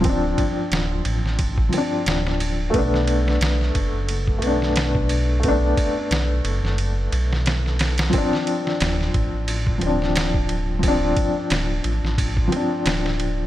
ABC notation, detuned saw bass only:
X:1
M:4/4
L:1/16
Q:"Swing 16ths" 1/4=89
K:Ddor
V:1 name="Detuned saw bass" clef=bass
D,,,2 z2 D,,,2 A,,, A,,,3 z2 D,,,4 | B,,,4 B,,,2 ^F,,, F,,,3 B,,,6- | B,,,2 z2 B,,,2 ^F,,, F,,,3 B,,,6 | z4 D,,,2 A,,, A,,,3 D,,,6- |
D,,,2 z2 D,,,2 A,,, A,,,3 z2 D,,,4 |]